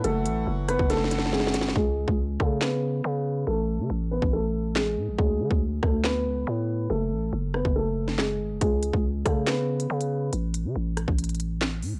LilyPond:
<<
  \new Staff \with { instrumentName = "Grand piano" } { \time 4/4 \key cis \phrygian \tempo 4 = 140 <a a'>4 r8 <b b'>8 <a a'>4 <gis gis'>4 | <gis gis'>4 r8 <a a'>8 <b b'>2 | <a a'>4 r8 <b b'>8 <a a'>4 <gis gis'>4 | <gis gis'>4 r8 <a a'>8 <b b'>2 |
<a a'>4 r8 <b b'>8 <a a'>4 <gis gis'>4 | <gis gis'>4 r8 <a a'>8 <b b'>2 | r1 | }
  \new Staff \with { instrumentName = "Harmonium" } { \clef bass \time 4/4 \key cis \phrygian <e fis fis'>1 | r1 | r1 | r1 |
r1 | r1 | r1 | }
  \new Staff \with { instrumentName = "808-style bass" } { \clef bass \time 4/4 \key cis \phrygian fis,,8 a,,8 fis,,8. fis,,4.~ fis,,16 gis,,16 fis,,16 | cis,8. cis,8. cis4. cis4 | a,,8. cis16 a,,8. a,,4.~ a,,16 a,16 a,,16 | d,8 d16 d,8. d,4 cis,8 a,4 |
fis,,8 a,,8 fis,,8. fis,,4.~ fis,,16 gis,,16 fis,,16 | cis,8. cis,8. cis4. cis4 | a,,8. cis16 a,,8. a,,4.~ a,,16 a,16 a,,16 | }
  \new DrumStaff \with { instrumentName = "Drums" } \drummode { \time 4/4 hh8 hh8 r8 <hh ss>16 bd16 \tuplet 3/2 { <hh sn>16 sn16 sn16 <hh sn>16 sn16 sn16 sn16 sn16 sn16 <hh sn>16 sn16 sn16 } | bd8. bd16 r8 bd8 <hc sn>4 r4 | r4 r8. bd16 r4 <hc sn>4 | bd8. bd16 r8 <bd ss>8 <hc sn>4 r4 |
r4 r8 ss16 bd16 r8. sn16 <hc sn>4 | <hh bd>8 hh16 bd16 r8 <hh bd ss>8 <hc hh sn>8. hh16 r16 hh8. | hh8 hh8 r8 <hh ss>16 bd16 hh32 hh32 hh32 hh32 hh8 <hc sn>8 hho8 | }
>>